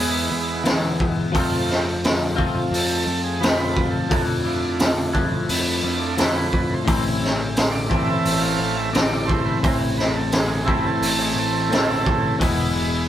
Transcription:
Already playing: E2 E3 G#3 B3 E4 G#4
0.32 E2
0.64 E3 G#3 B3 E4, snare, open hi-hat
1.00 kick
1.32 F2 F3 A3 C4 F4, kick, open hi-hat
1.37 C4 F4
1.70 snare
2.04 snare, open hi-hat
2.36 F3 A3 C4 F4, kick
2.71 F2 A4, open hi-hat
3.07 F2
3.24 G#4
3.40 F3 A3 C4 F4 B4, snare, open hi-hat
3.77 kick
3.91 A4
4.09 F2 F3 A3 D4 E4, kick, open hi-hat
4.45 F3 D4 E4
4.79 snare, open hi-hat
5.13 F3 A3 D4 E4, kick
5.49 F2 B4, open hi-hat
5.83 F2 F3 D4 E4
6.06 A4
6.17 F3 A3 D4 E4, snare, open hi-hat
6.22 B4
6.53 kick
6.74 C5
6.85 A1 A2 E3 A3 C4, kick, open hi-hat
6.90 E4
7.24 snare
7.56 C5, snare, open hi-hat
7.72 D5
7.89 E3 A3 C4 E4, kick
7.93 A2 E3
8.05 E5
8.25 A1, open hi-hat
8.40 F5
8.59 A1
8.75 E5
8.93 A2 E3 A3 C4 E4 D5, snare, open hi-hat
9.26 A3 C4 E4 C5, kick
9.45 B4
9.62 A1 A2 E3 A3 C4 C5, kick, open hi-hat
9.67 E4
9.98 B4, snare
10.16 A4
10.32 G#4, snare, open hi-hat
10.65 A3 C4 E4 B4, kick
10.69 A2 E3
10.87 A4
11.02 A1, open hi-hat
11.21 G#4
11.37 A1 A4
11.70 A2 E3 A3 C4 E4, snare, open hi-hat
12.06 kick
12.39 E1 E3 G#3 B3 E4 B4, kick, open hi-hat
12.44 E4

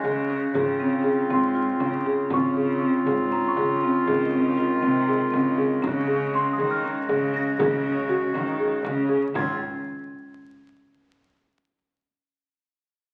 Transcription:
Already playing: C#3 G#3 F#4 C6
0.04 C#3 G#4, frame drum
0.30 C#4
0.55 C#3 C4 F4 G#4, frame drum
0.80 C4, frame drum
1.04 G#4
1.30 G#2 C4 C6, frame drum
1.55 F4
1.80 C#3 C#4, frame drum
2.06 G#4
2.30 C#3 C4 F4 C#6, frame drum
2.57 G#4
2.82 C4
3.06 G#2 G#4, frame drum
3.32 C#4 A#5
3.48 C#6
3.57 C#3 G#4, frame drum
3.82 C4, frame drum
4.07 C#3 D#3 G#3 G#4, frame drum
4.33 C4
4.57 F4
4.82 C3 C4, frame drum
5.08 G#4
5.32 C#3 C4, frame drum
5.58 G#4, frame drum
5.82 C#3 C#4 F#4, frame drum
6.07 G#4
6.34 C#4 C6
6.53 D#6
6.58 D#3 G#4, frame drum
6.71 F6
6.84 C#4
7.09 C#3 G#4, frame drum
7.34 C#4 A#6, frame drum
7.59 C#3 G#4, frame drum
7.84 C#4
8.09 F#4
8.34 D#3 C#4, frame drum
8.60 G#4
8.85 C#3 C#4, frame drum
9.09 G#4, frame drum
9.34 C#2 C#3 C4 C#4 F4 G#6, frame drum

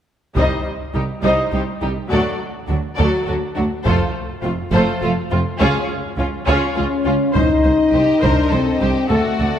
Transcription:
0.36 C2 G3 D#4 C5 D#5, taiko
0.94 C2 G3 D#4 G4
1.23 C2 G3 D#4 C5 D#5
1.52 C2 G3 D#4 G4 C5
1.81 C2 G3 D#4 G4
2.10 D2 F#3 A3 F#4 A4 D5
2.67 D2 F#3 D4 F#4
2.97 D2 F#3 F#4 A4 D5
3.25 D2 F#3 F#4 A4
3.55 D2 F#3 D4 F#4
3.84 F1 F2 A3 F4 A4 C5, taiko
4.42 F1 F2 A3 C4 F4
4.72 F1 F2 A3 F4 A4 C5
5.02 F1 F2 A3 F4 A4
5.31 F1 F2 A3 C4 F4
5.59 C#2 G#3 C#4 F4 G#4 C#5
6.18 C#2 C#4 F4
6.46 C#2 C#4 F4 G#4 C#5
6.76 C#2 C#4 F4 G#4
7.05 C#2 C#4 F4
7.34 C2 D#4 C5 D#5, taiko
7.64 C2 C5
7.92 C2 G4 C5
8.21 C2 D4 A#4 C5, taiko
8.51 C2 C4 A4 C5
8.81 C2 G4 C5
9.09 D2 A3 F#4 A4 D5 F#5
9.39 D2 A4

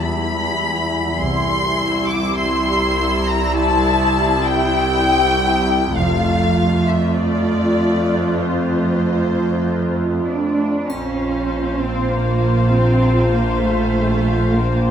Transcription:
Already playing: E2 G3 E4
0.01 B5
1.20 C2 G3 E4 C6
1.81 E6
2.09 D6
2.37 C6
3.27 A#5
3.56 A5
4.45 G5
5.96 F1 F2 A3 F4 F5
6.87 E5
7.16 D5
8.39 C5
10.28 D4
10.89 A#1 C#4 F4 C5 F5, triangle
11.81 C4
12.11 A#3
12.72 C4
13.32 A#3
13.61 A3
14.51 A#3

